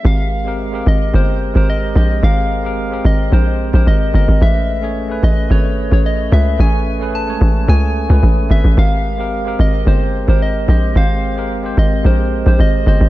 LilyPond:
<<
  \new Staff \with { instrumentName = "Soft synth lead" } { \time 4/4 \key aes \major \tempo 4 = 110 f''4. ees''8 c''8. c''16 ees''8 ees''8 | f''4. ees''8 c''8. c''16 ees''8 ees''8 | e''4. ees''8 cis''8. cis''16 ees''8 e''8 | gis''4 a''4 gis''4. e''8 |
f''4. ees''8 c''8. c''16 ees''8 ees''8 | f''4. ees''8 c''8. c''16 ees''8 ees''8 | }
  \new Staff \with { instrumentName = "Tine electric piano" } { \time 4/4 \key aes \major <aes c' g' bes'>8 r16 <aes c' g' bes'>8 <aes c' g' bes'>8 r16 <aes c' g' bes'>8 r16 <aes c' g' bes'>8 r16 <aes c' g' c''>8 | <aes c' g' bes'>8 r16 <aes c' g' bes'>8 <aes c' g' bes'>8 r16 <aes c' g' bes'>8 r16 <aes c' g' bes'>8 r16 <aes c' g' bes'>8 | <a cis' gis' b'>8 r16 <a cis' gis' cis''>8 <a cis' gis' b'>8 r16 <a cis' gis' b'>8 r16 <a cis' gis' cis''>8 r16 <a cis' gis' b'>8 | <a cis' gis' cis''>8 r16 <a cis' gis' b'>8 <gis a cis' cis''>8 r16 <a cis' gis' cis''>8 r16 <a cis' gis' b'>8 r16 <a cis' gis' b'>8 |
<aes c' g' bes'>8 r16 <aes c' g' bes'>8 <aes c' g' bes'>8 r16 <aes c' g' c''>8 r16 <aes c' g' bes'>8 r16 <aes c' g' c''>8 | <aes c' g' c''>8 r16 <aes c' g' bes'>8 <aes c' g' c''>8 r16 <aes c' g' bes'>8 r16 <aes c' g' c''>8 r16 <aes c' g' c''>8 | }
  \new Staff \with { instrumentName = "Log drum bass" } { \clef bass \time 4/4 \key aes \major aes,,4. aes,,8 g,,8. aes,,8. bes,,8 | aes,,4. aes,,8 bes,,8. bes,,16 aes,,8 g,,16 aes,,16 | a,,4. a,,8 gis,,8. a,,8. cis,8 | a,,4. a,,8 cis,8. cis,16 a,,8 gis,,16 a,,16 |
aes,,4. aes,,8 g,,8. aes,,8. bes,,8 | aes,,4. aes,,8 bes,,8. bes,,16 aes,,8 g,,16 aes,,16 | }
>>